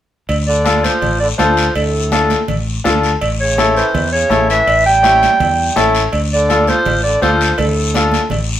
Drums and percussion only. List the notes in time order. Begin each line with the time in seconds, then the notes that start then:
0.29 cowbell, long guiro
0.66 high conga, short guiro
0.84 high conga, short guiro
1.02 cowbell, low conga, long guiro
1.39 high conga, low timbale, short guiro
1.57 short guiro
1.75 cowbell, long guiro
2.12 high conga, short guiro
2.30 high conga, short guiro
2.48 cowbell, low conga, long guiro
2.85 high conga, low conga, low timbale, short guiro
3.04 short guiro
3.21 cowbell, long guiro
3.58 high conga, short guiro
3.77 short guiro
3.94 cowbell, low conga, long guiro
4.31 high conga, short guiro
4.50 short guiro
4.67 cowbell, long guiro
5.04 high conga, short guiro
5.23 high conga, short guiro
5.40 cowbell, low conga, long guiro
5.76 high conga, short guiro
5.95 short guiro
6.13 cowbell, long guiro
6.50 high conga, short guiro
6.67 high conga, short guiro
6.85 cowbell, low conga, long guiro
7.22 high conga, low timbale, short guiro
7.41 short guiro
7.58 cowbell, low conga, long guiro
7.94 high conga, short guiro
8.12 high conga, short guiro
8.30 cowbell, low conga, long guiro